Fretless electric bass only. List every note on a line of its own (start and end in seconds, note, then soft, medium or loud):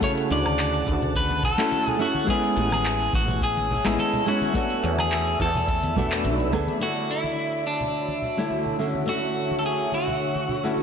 0.30 0.83 D2 loud
0.87 1.54 D2 loud
2.57 3.10 A1 loud
3.13 3.81 A1 loud
3.86 3.96 A1 medium
4.84 5.36 E2 loud
5.40 6.26 E2 loud
6.25 6.53 B1 medium
6.53 6.65 D2 medium